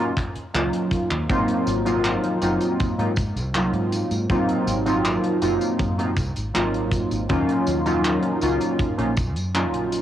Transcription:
Already playing: F#3 A#3
0.00 C#4 D#4 F4
0.17 kick, clap, closed hi-hat
0.36 muted fingered electric bass stroke, closed hi-hat
0.54 C#2 F#3 A#3 C#4 D#4 F4, clap, closed hi-hat
0.73 closed hi-hat
0.91 kick, closed hi-hat
1.11 D#2, clap, closed hi-hat
1.29 G#1 F#3 A#3 C4 D#4 F4, kick, closed hi-hat, tambourine
1.48 closed hi-hat
1.67 G#1, closed hi-hat, tambourine
1.85 F#3 A#3 C4 D#4 F4, closed hi-hat, tambourine
2.05 clap, closed hi-hat, tambourine
2.24 closed hi-hat
2.42 F#1 F#3 A#3 C4 D#4 F4, closed hi-hat, tambourine
2.61 closed hi-hat, tambourine
2.80 muted fingered electric bass stroke, kick, closed hi-hat, tambourine
2.98 G#2 F#3 A#3 C4 D#4 F4, closed hi-hat
3.16 kick, closed hi-hat, tambourine
3.36 C2, closed hi-hat, tambourine
3.54 F#3 A#3 C4 D#4 F4, clap, closed hi-hat, tambourine
3.73 G#2, closed hi-hat
3.92 closed hi-hat, tambourine
4.11 G#2, closed hi-hat, tambourine
4.29 F#3 A#3 C4 D#4 F4, kick, closed hi-hat, tambourine
4.49 closed hi-hat
4.67 G#1, closed hi-hat, tambourine
4.85 F#3 A#3 C4 D#4 F4, closed hi-hat, tambourine
5.05 clap, closed hi-hat, tambourine
5.24 closed hi-hat
5.42 F#1 F#3 A#3 C4 D#4 F4, closed hi-hat, tambourine
5.61 closed hi-hat, tambourine
5.79 F#2, kick, closed hi-hat, tambourine
5.98 F#3 A#3 C4 D#4 F4, closed hi-hat
6.16 C2, kick, closed hi-hat, tambourine
6.36 G#1, closed hi-hat, tambourine
6.54 G#1 F#3 A#3 C4 D#4 F4, clap, closed hi-hat, tambourine
6.74 closed hi-hat
6.92 kick, closed hi-hat, tambourine
7.11 G#1, closed hi-hat, tambourine
7.29 D#2 F#3 A#3 C#4 D#4 F4, kick, closed hi-hat, tambourine
7.49 closed hi-hat
7.67 D#2, closed hi-hat, tambourine
7.86 F#3 A#3 C#4 D#4 F4, closed hi-hat, tambourine
8.05 clap, closed hi-hat, tambourine
8.23 closed hi-hat
8.41 C#2 F#3 A#3 C#4 D#4 F4, closed hi-hat, tambourine
8.61 closed hi-hat, tambourine
8.79 muted fingered electric bass stroke, kick, closed hi-hat, tambourine
8.98 A#1 F#3 A#3 C#4 D#4 F4, closed hi-hat
9.17 kick, closed hi-hat, tambourine
9.36 F#2, closed hi-hat, tambourine
9.54 F#3 A#3 C#4 D#4 F4, clap, closed hi-hat, tambourine
9.73 A#1, closed hi-hat
9.92 closed hi-hat, tambourine

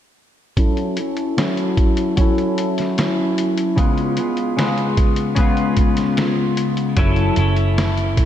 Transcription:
0.57 F#3 C#4 E4 A4, kick, closed hi-hat
0.77 closed hi-hat
0.97 C#4 E4 A4, closed hi-hat
1.17 closed hi-hat
1.37 F#3 C#4 E4 A4, snare, closed hi-hat
1.57 closed hi-hat
1.77 kick, closed hi-hat
1.97 closed hi-hat
2.16 F#3 C#4, kick, closed hi-hat
2.21 E4 A4
2.38 closed hi-hat
2.58 closed hi-hat
2.78 snare, closed hi-hat
2.98 snare, closed hi-hat
3.38 closed hi-hat
3.58 closed hi-hat
3.76 C#3 G#3 B3 F4, kick, closed hi-hat
3.98 closed hi-hat
4.16 G#3 B3 F4, closed hi-hat
4.37 closed hi-hat
4.57 C#3 G#3 B3 F4, snare, closed hi-hat
4.78 closed hi-hat
4.97 kick, closed hi-hat
5.16 closed hi-hat
5.35 C#3 G#3 B3, kick, closed hi-hat
5.41 F4
5.57 closed hi-hat
5.77 kick, closed hi-hat
5.97 snare, closed hi-hat
6.17 snare, closed hi-hat
6.57 closed hi-hat
6.77 closed hi-hat
6.97 F#1 F#3 C#4 E4 A4, kick, closed hi-hat
7.16 closed hi-hat
7.36 F#1 C#4 E4 A4, closed hi-hat
7.56 closed hi-hat
7.78 snare, closed hi-hat
7.97 closed hi-hat
8.17 B1, kick, closed hi-hat

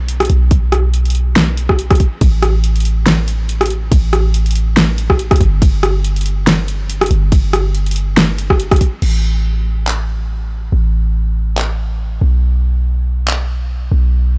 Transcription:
Already playing: B1
0.08 closed hi-hat
0.20 cross-stick, closed hi-hat
0.25 closed hi-hat
0.30 B1, closed hi-hat
0.51 kick, closed hi-hat
0.72 cross-stick, closed hi-hat
0.94 closed hi-hat
1.05 closed hi-hat
1.10 closed hi-hat
1.15 closed hi-hat
1.36 snare, closed hi-hat
1.57 closed hi-hat
1.69 kick, cross-stick
1.79 closed hi-hat
1.91 kick, cross-stick, closed hi-hat
1.95 closed hi-hat
2.00 kick, closed hi-hat
2.21 A1, kick, closed hi-hat, ride
2.43 cross-stick, closed hi-hat
2.64 closed hi-hat
2.76 closed hi-hat
2.80 closed hi-hat
2.85 closed hi-hat
3.06 snare, closed hi-hat, ride
3.28 closed hi-hat
3.49 closed hi-hat
3.61 cross-stick, closed hi-hat
3.66 closed hi-hat
3.70 closed hi-hat
3.92 A1, kick, closed hi-hat, ride
4.13 cross-stick, closed hi-hat
4.34 closed hi-hat
4.46 closed hi-hat
4.51 closed hi-hat
4.55 closed hi-hat
4.77 snare, closed hi-hat, ride
4.98 closed hi-hat
5.10 kick, cross-stick
5.19 closed hi-hat
5.31 kick, cross-stick, closed hi-hat
5.36 closed hi-hat
5.40 G1, kick, closed hi-hat
5.62 kick, closed hi-hat, ride
5.83 cross-stick, closed hi-hat
6.04 closed hi-hat
6.16 closed hi-hat
6.21 closed hi-hat
6.26 closed hi-hat
6.47 snare, closed hi-hat, ride
6.68 closed hi-hat
6.90 closed hi-hat
7.01 cross-stick, closed hi-hat
7.06 closed hi-hat
7.11 G1, closed hi-hat
7.32 kick, closed hi-hat, ride
7.53 cross-stick, closed hi-hat
7.75 closed hi-hat
7.86 closed hi-hat
7.91 closed hi-hat
7.96 closed hi-hat
8.17 snare, closed hi-hat, ride
8.38 closed hi-hat
8.50 kick, cross-stick
8.60 closed hi-hat
8.71 kick, cross-stick, closed hi-hat
8.76 closed hi-hat
8.81 kick, closed hi-hat
9.02 A1, crash
9.87 clap
10.72 A1
11.58 clap
12.21 B1
13.28 clap
13.92 B1

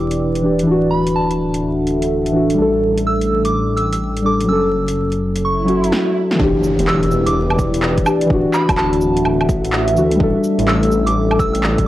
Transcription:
Already playing: E1 E3 D4 E4 G4 B4 D5 G5
0.11 closed hi-hat
0.35 closed hi-hat
0.42 E3 D4 G4
0.59 E3, closed hi-hat
0.67 D1 D4
0.71 F#4
0.82 E5
0.89 A4 B5
1.07 closed hi-hat
1.16 A5
1.31 closed hi-hat
1.54 F#5, closed hi-hat
1.87 closed hi-hat
2.02 closed hi-hat
2.26 closed hi-hat
2.32 E3 D4
2.36 F#4
2.50 closed hi-hat
2.54 G3 D4
2.58 A1 A3 A4
2.98 closed hi-hat
3.07 E6
3.21 closed hi-hat
3.43 D5 D6, closed hi-hat
3.47 G5
3.77 E6, closed hi-hat
3.93 E6, closed hi-hat
4.17 closed hi-hat
4.22 G3 D4 D6
4.26 A4
4.40 F#3, closed hi-hat
4.48 F#1 C#4 E6
4.52 A4
4.88 closed hi-hat
5.12 closed hi-hat
5.36 closed hi-hat
5.44 C#6, swell
5.65 F#3 C#4 F#4, closed hi-hat
5.84 closed hi-hat
5.92 snare
6.31 snare
6.35 E3
6.39 E1 D4 E4 G4, kick, impact
6.64 cabasa
6.72 B4
6.77 E1 D5, closed hi-hat
6.88 E6, clap
7.03 closed hi-hat
7.11 E1, cabasa
7.26 G5 D6, closed hi-hat
7.50 low woodblock
7.59 kick, closed hi-hat, cabasa
7.74 closed hi-hat
7.82 clap
7.97 kick, closed hi-hat
8.03 E3 D4, cabasa, low woodblock
8.08 G4
8.21 closed hi-hat
8.26 E3 D4
8.30 D1 D4 F#4, kick
8.53 A4 E5 B5, clap, cabasa
8.69 D1, kick, closed hi-hat, low woodblock
8.77 A5, clap
8.87 F#5
8.93 closed hi-hat
9.01 D1, cabasa
9.17 closed hi-hat
9.25 D1, low woodblock
9.41 low woodblock
9.49 A1, kick, closed hi-hat, cabasa
9.64 closed hi-hat
9.73 clap
9.88 closed hi-hat
9.94 D2 E3 D4, cabasa
9.98 F#4
10.11 G3, closed hi-hat
10.19 A1 A3 D4 A4, kick
10.44 cabasa
10.58 A1, closed hi-hat
10.68 E6, clap
10.83 closed hi-hat
10.91 A1, cabasa
11.06 D5 G5 D6, closed hi-hat
11.31 low woodblock
11.39 E6, kick, closed hi-hat, cabasa
11.53 E6, closed hi-hat
11.63 clap
11.78 kick, closed hi-hat
11.84 G3

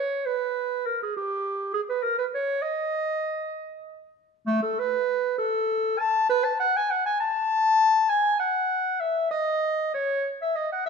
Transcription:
Already playing: C#5
0.26 B4
0.86 A#4
1.02 G#4
1.16 G4
1.74 G#4
1.89 B4
2.03 A#4
2.18 B4
2.34 C#5
2.62 D#5
4.46 A3
4.62 A4
4.79 B4
5.38 A4
5.99 A5
6.29 B4
6.44 A5
6.59 F#5
6.76 G#5
6.90 F#5
7.06 G#5
7.20 A5
8.09 G#5
8.39 F#5
9.00 E5
9.31 D#5
9.94 C#5
10.41 E5
10.56 D#5
10.72 F#5
10.85 E5

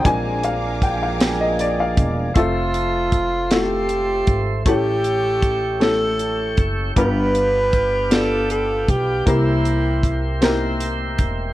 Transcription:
0.04 A#1 F3 G#3 A#3 C4 D4 G#4 F5 G#5 A#5 D6, kick, closed hi-hat
0.44 F5, closed hi-hat
0.82 G5, kick, closed hi-hat
1.03 F5
1.20 snare, closed hi-hat
1.41 D#5
1.59 D5, closed hi-hat
1.80 F5
1.97 E1, kick, closed hi-hat
2.34 F1 A3 C4 F4 A4 C5 E5 C6, kick, closed hi-hat
2.38 F4
2.74 closed hi-hat
3.12 kick, closed hi-hat
3.51 A3 C4 E4 F4 G4 A4, snare, closed hi-hat
3.89 closed hi-hat
4.27 G#1, kick, closed hi-hat
4.65 A1 A2 A3 C#4 E4 G4 A4 G5 C#6, kick, closed hi-hat
5.04 closed hi-hat
5.43 kick, closed hi-hat
5.80 A3 C#4 E4 G4 A4, snare, closed hi-hat
6.19 closed hi-hat
6.57 F#1, kick, closed hi-hat
6.96 G1 G2 B3 D4 F4 G4 B4 F5 D6, kick, closed hi-hat
7.35 closed hi-hat
7.73 kick, closed hi-hat
8.11 B3 D4 F4 G4 A4 D5, snare, closed hi-hat
8.50 A4, closed hi-hat
8.88 B1 G4, kick, closed hi-hat
9.26 C2 C3 A#3 C4 E4 G4 A#4 E5 C6, kick, closed hi-hat
9.66 closed hi-hat
10.04 kick, closed hi-hat
10.42 A#3 C4 D#4 G4 A#4, snare, closed hi-hat
10.49 E4
10.80 closed hi-hat
11.18 E1, kick, closed hi-hat

